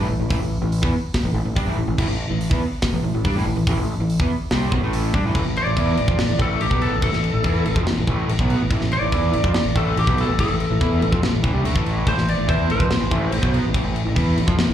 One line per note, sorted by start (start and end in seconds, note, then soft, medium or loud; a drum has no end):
0.09 0.19 A1 medium
0.09 0.19 A2 medium
0.09 0.20 E3 medium
0.19 0.29 A1 medium
0.19 0.29 A2 medium
0.19 0.30 E3 medium
0.30 0.39 A1 medium
0.30 0.40 A2 medium
0.30 0.40 E3 loud
0.30 kick loud
0.30 open hi-hat medium
0.40 0.60 A1 medium
0.40 0.58 A2 medium
0.40 0.58 E3 medium
0.61 0.81 A1 medium
0.61 0.79 A2 medium
0.61 0.79 E3 medium
0.72 open hi-hat medium
0.82 0.93 E2 loud
0.82 0.93 E3 medium
0.82 0.93 B3 medium
0.82 kick loud
1.14 kick loud
1.14 snare loud
1.14 open hi-hat medium
1.24 1.33 A1 medium
1.24 1.34 A2 medium
1.24 1.34 E3 medium
1.34 1.45 A1 medium
1.34 1.44 A2 medium
1.34 1.45 E3 medium
1.45 1.55 A1 medium
1.45 1.56 A2 medium
1.45 1.55 E3 medium
1.56 1.65 G2 loud
1.56 1.66 G3 loud
1.56 1.66 D4 loud
1.56 kick loud
1.56 open hi-hat medium
1.66 1.76 A1 medium
1.66 1.77 A2 medium
1.66 1.77 E3 loud
1.77 1.87 A1 medium
1.77 1.86 A2 medium
1.77 1.87 E3 medium
1.88 1.98 A1 medium
1.88 1.96 A2 medium
1.88 1.98 E3 medium
1.98 2.08 A1 medium
1.98 2.08 A2 loud
1.98 2.08 E3 loud
1.98 kick loud
1.98 crash loud
2.08 2.28 A1 medium
2.08 2.26 A2 medium
2.08 2.26 E3 medium
2.30 2.50 A1 medium
2.30 2.47 A2 medium
2.30 2.47 E3 medium
2.41 open hi-hat medium
2.50 2.61 E2 loud
2.50 2.61 E3 medium
2.50 2.61 B3 loud
2.50 kick loud
2.82 kick loud
2.82 snare loud
2.82 open hi-hat medium
2.93 3.02 A1 medium
2.93 3.02 A2 medium
2.93 3.03 E3 medium
3.03 3.13 A1 medium
3.03 3.14 A2 medium
3.03 3.14 E3 medium
3.14 3.24 A1 medium
3.14 3.25 A2 medium
3.14 3.25 E3 medium
3.25 3.35 G2 loud
3.25 3.35 G3 medium
3.25 3.35 D4 medium
3.25 kick loud
3.25 open hi-hat medium
3.36 3.45 A1 medium
3.36 3.46 A2 loud
3.36 3.46 E3 medium
3.46 3.56 A1 medium
3.46 3.56 A2 medium
3.46 3.56 E3 medium
3.56 3.66 A1 medium
3.56 3.67 A2 medium
3.56 3.67 E3 medium
3.67 3.76 A1 loud
3.67 3.77 A2 medium
3.67 3.78 E3 loud
3.67 kick loud
3.67 open hi-hat medium
3.77 3.97 A1 medium
3.77 3.95 A2 medium
3.77 3.96 E3 medium
3.98 4.18 A1 medium
3.98 4.16 A2 medium
3.98 4.16 E3 medium
4.10 open hi-hat medium
4.20 4.29 E2 loud
4.20 4.30 E3 medium
4.20 4.30 B3 medium
4.20 kick loud
4.51 4.71 C2 medium
4.51 4.71 C3 medium
4.51 4.72 G3 loud
4.51 4.72 C4 loud
4.51 snare loud
4.51 open hi-hat medium
4.72 4.82 B1 medium
4.72 4.82 B2 medium
4.72 4.82 F#3 loud
4.72 kick loud
4.82 5.12 A1 medium
4.82 5.13 A2 medium
4.82 5.13 E3 loud
4.82 5.14 A3 medium
4.93 open hi-hat medium
5.14 5.24 G2 medium
5.14 5.23 G3 medium
5.14 5.24 D4 medium
5.14 kick loud
5.24 5.34 A1 medium
5.24 5.33 A2 medium
5.24 5.34 E3 loud
5.35 5.44 A1 medium
5.35 5.44 A2 medium
5.35 5.44 E3 loud
5.35 kick loud
5.35 crash medium
5.45 5.65 A1 medium
5.45 5.62 A2 medium
5.45 5.62 E3 medium
5.56 6.38 D5 medium
5.56 crash medium
5.66 5.76 A1 medium
5.66 5.76 A2 medium
5.66 5.76 E3 medium
5.77 5.96 E2 loud
5.77 5.96 E3 medium
5.77 5.97 B3 medium
5.77 5.98 E4 loud
5.77 kick loud
5.77 crash medium
5.97 6.07 A1 medium
5.97 6.07 A2 medium
5.97 6.07 E3 medium
5.97 crash medium
6.07 6.18 F2 medium
6.07 6.18 F3 medium
6.07 6.18 C4 medium
6.07 kick loud
6.18 6.28 A1 medium
6.18 6.28 A2 medium
6.18 6.28 E3 medium
6.18 snare loud
6.18 crash medium
6.28 6.39 A1 medium
6.28 6.36 A2 medium
6.28 6.37 E3 medium
6.38 6.59 A1 loud
6.38 6.59 A2 medium
6.38 6.59 E3 medium
6.38 6.60 A3 medium
6.38 kick loud
6.38 crash medium
6.42 6.61 A4 medium
6.60 6.70 A1 medium
6.60 6.69 A2 medium
6.60 6.70 E3 medium
6.60 6.81 G4 medium
6.60 crash medium
6.70 6.90 B1 medium
6.70 6.91 B2 medium
6.70 6.91 F#3 medium
6.70 6.91 B3 loud
6.70 kick loud
6.82 7.02 A4 medium
6.82 crash medium
6.91 7.01 A1 medium
6.91 7.00 A2 medium
6.91 7.01 E3 medium
7.01 7.12 A1 medium
7.01 7.10 A2 medium
7.01 7.11 E3 loud
7.01 7.85 A4 loud
7.01 kick loud
7.01 crash medium
7.12 7.32 A1 medium
7.12 7.29 A2 medium
7.12 7.29 E3 medium
7.12 snare soft
7.24 crash medium
7.33 7.44 A1 medium
7.33 7.43 A2 medium
7.33 7.42 E3 medium
7.44 7.64 E2 medium
7.44 7.65 E3 medium
7.44 7.65 B3 loud
7.44 7.65 E4 loud
7.44 kick loud
7.44 crash medium
7.65 7.75 A1 medium
7.65 7.76 A2 medium
7.65 7.76 E3 medium
7.65 crash medium
7.76 7.86 F2 loud
7.76 7.86 F3 medium
7.76 7.87 C4 loud
7.76 kick loud
7.86 7.96 A1 medium
7.86 7.98 A2 medium
7.86 7.98 E3 medium
7.86 snare loud
7.86 crash medium
7.97 8.07 A1 medium
7.97 8.07 A2 medium
7.97 8.08 E3 medium
8.07 8.27 A1 loud
8.07 8.28 A2 medium
8.07 8.28 E3 medium
8.07 8.29 A3 loud
8.07 kick loud
8.07 crash medium
8.28 8.38 A1 medium
8.28 8.39 A2 medium
8.28 8.40 E3 medium
8.28 crash medium
8.39 8.59 B1 medium
8.39 8.60 B2 medium
8.39 8.60 F#3 medium
8.39 8.60 B3 loud
8.39 kick loud
8.50 crash medium
8.59 8.69 A1 medium
8.59 8.70 A2 medium
8.59 8.70 E3 medium
8.70 8.80 A1 loud
8.70 8.80 A2 medium
8.70 8.81 E3 loud
8.70 kick loud
8.70 crash medium
8.81 9.00 A1 medium
8.81 8.98 A2 medium
8.81 8.98 E3 medium
8.81 snare soft
8.91 9.74 D5 loud
8.91 crash medium
9.01 9.11 A1 medium
9.01 9.12 A2 medium
9.01 9.11 E3 medium
9.12 9.32 E2 medium
9.12 9.32 E3 medium
9.12 9.32 B3 medium
9.12 9.33 E4 loud
9.12 kick medium
9.12 crash medium
9.32 9.43 A1 medium
9.32 9.43 A2 medium
9.32 9.44 E3 medium
9.32 crash medium
9.44 9.54 F2 loud
9.44 9.54 F3 medium
9.44 9.54 C4 medium
9.44 kick loud
9.54 9.65 A1 medium
9.54 9.63 A2 medium
9.54 9.63 E3 medium
9.54 snare loud
9.54 crash medium
9.64 9.75 A1 medium
9.64 9.74 A2 medium
9.64 9.74 E3 medium
9.75 9.95 A1 loud
9.75 9.95 A2 medium
9.75 9.95 E3 medium
9.75 9.96 A3 loud
9.75 9.97 A4 medium
9.75 kick loud
9.75 crash medium
9.96 10.06 A1 medium
9.96 10.06 A2 medium
9.96 10.07 E3 medium
9.96 10.18 G4 loud
9.96 crash medium
10.07 10.27 B1 medium
10.07 10.27 B2 loud
10.07 10.28 F#3 loud
10.07 10.28 B3 loud
10.07 kick loud
10.18 10.39 A4 loud
10.18 crash medium
10.28 10.38 A1 medium
10.28 10.38 A2 medium
10.28 10.38 E3 medium
10.39 10.48 A1 loud
10.39 10.49 A2 medium
10.39 10.49 E3 loud
10.39 11.21 A4 loud
10.39 kick loud
10.39 crash medium
10.49 10.69 A1 medium
10.49 10.66 A2 medium
10.49 10.66 E3 medium
10.60 crash medium
10.70 10.80 A1 medium
10.70 10.80 A2 medium
10.70 10.79 E3 medium
10.80 11.00 E2 medium
10.80 11.01 E3 medium
10.80 11.01 B3 loud
10.80 11.01 E4 loud
10.80 kick medium
10.80 crash medium
11.01 11.11 A1 medium
11.01 11.11 A2 medium
11.01 11.12 E3 medium
11.01 crash medium
11.12 11.22 F2 medium
11.12 11.22 F3 medium
11.12 11.22 C4 loud
11.12 kick loud
11.22 11.32 A1 medium
11.22 11.31 A2 medium
11.22 11.30 E3 medium
11.22 snare loud
11.22 crash medium
11.32 11.43 A1 medium
11.32 11.41 A2 medium
11.32 11.42 E3 medium
11.42 11.54 A1 loud
11.42 11.52 A2 medium
11.42 11.53 E3 medium
11.42 kick loud
11.42 crash medium
11.53 11.63 C2 loud
11.53 11.63 C3 medium
11.53 11.64 G3 loud
11.64 11.74 D2 loud
11.64 11.74 D3 loud
11.64 11.75 A3 loud
11.64 crash medium
11.75 12.04 A1 medium
11.75 12.05 A2 medium
11.75 12.06 E3 medium
11.75 12.06 A3 loud
11.75 kick loud
11.86 crash medium
12.06 12.16 A1 medium
12.06 12.16 A2 loud
12.06 12.16 E3 loud
12.06 12.28 C5 loud
12.06 kick loud
12.06 crash medium
12.17 12.37 A1 medium
12.17 12.34 A2 medium
12.17 12.34 E3 medium
12.17 snare soft
12.28 12.49 D5 loud
12.28 crash medium
12.38 12.48 A1 medium
12.38 12.47 A2 medium
12.38 12.46 E3 medium
12.47 12.68 E2 medium
12.47 12.68 E3 loud
12.47 12.68 B3 loud
12.47 12.69 E4 medium
12.47 12.69 C5 medium
12.47 kick loud
12.47 crash medium
12.69 12.79 A1 medium
12.69 12.79 A2 medium
12.69 12.80 E3 medium
12.69 13.52 C5 loud
12.69 crash medium
12.79 12.89 F2 loud
12.79 12.89 F3 medium
12.79 12.90 C4 loud
12.79 kick loud
12.90 13.00 A1 medium
12.90 13.00 A2 medium
12.90 13.00 E3 medium
12.90 snare loud
12.90 crash medium
13.00 13.10 A1 medium
13.00 13.10 A2 medium
13.00 13.10 E3 medium
13.11 13.31 A1 loud
13.11 13.31 A2 medium
13.11 13.32 E3 loud
13.11 13.32 A3 medium
13.11 kick loud
13.11 crash medium
13.31 13.42 A1 medium
13.31 13.41 A2 medium
13.31 13.42 E3 medium
13.31 crash medium
13.41 13.62 B1 medium
13.41 13.63 B2 loud
13.41 13.63 F#3 loud
13.41 13.63 B3 loud
13.41 kick loud
13.54 crash medium
13.63 13.73 A1 medium
13.63 13.73 A2 medium
13.63 13.73 E3 medium
13.74 13.84 A1 medium
13.74 13.84 A2 medium
13.74 13.84 E3 medium
13.74 kick loud
13.74 crash medium
13.85 14.04 A1 medium
13.85 14.02 A2 medium
13.85 14.02 E3 medium
13.96 crash medium
14.05 14.16 A1 medium
14.05 14.15 A2 medium
14.05 14.14 E3 medium
14.15 14.36 E2 loud
14.15 14.36 E3 loud
14.15 14.37 B3 loud
14.15 14.37 E4 loud
14.15 kick loud
14.15 crash medium
14.37 14.47 A1 medium
14.37 14.46 A2 medium
14.37 14.47 E3 medium
14.37 crash medium
14.47 14.57 F2 loud
14.47 14.57 F3 medium
14.47 14.58 C4 medium
14.47 kick loud
14.58 14.68 A1 medium
14.58 14.68 A2 medium
14.58 14.69 E3 medium
14.58 snare loud
14.58 crash medium
14.69 14.74 A1 medium
14.69 14.74 A2 medium
14.69 14.74 E3 medium